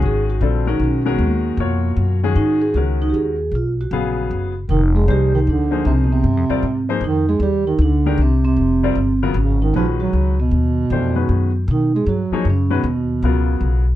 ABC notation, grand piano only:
X:1
M:3/4
L:1/8
Q:"Swing" 1/4=155
K:Ablyd
V:1 name="Grand piano"
[E,A,_D_GA]2 [=D,=G,CF=A] [E,_A,_D_GB]2 [E,A,DGB]- | [E,A,_D_GB]2 [_C,FGB_d]3 [E,A,DGA]- | [E,A,_D_GA]2 [E,A,DGB]3 z | z2 [_D,_G,_CAf]3 z |
z2 [F,B,EAc]3 [F,B,EAc]- | [F,B,EAc]2 z [G,CFBd] z [F,B,EAc] | z4 z [E,A,DGB] | z3 [G,CFBd] z [_D,_G,=B,F_B] |
z2 [E,A,_D_G_c]3 z | z2 [=E,=A,DGc] [_E,_A,_D_G_c]2 z | z3 [F,B,EA_d] z [E,A,_D_G_c] | z2 [_D,_G,_CFB]3 z |]